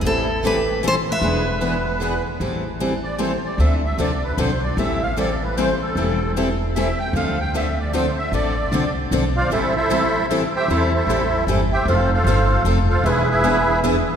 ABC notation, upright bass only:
X:1
M:3/4
L:1/8
Q:"Swing" 1/4=152
K:Am
V:1 name="Upright bass" clef=bass
A,,,6 | E,,,6 | A,,,6 | D,,2 C,,2 B,,,2 |
A,,,6 | E,,,6 | D,,6 | A,,,2 C,,2 B,,,2 |
A,,,6 | E,,2 A,,,2 G,,,2 | F,,,2 G,,,2 F,,,2 | E,,,6 |]